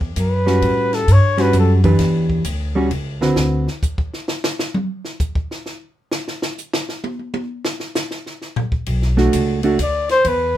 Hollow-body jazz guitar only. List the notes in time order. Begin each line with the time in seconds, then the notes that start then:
0.46 G3 C#4 F#4
1.37 G3 C#4 F#4
1.84 E3 D4 G4 B4
2.75 G3 C#4 F#4
3.21 D3 C4 F#4 B4
9.17 A3 D4 F#4
9.63 A3 D4 F#4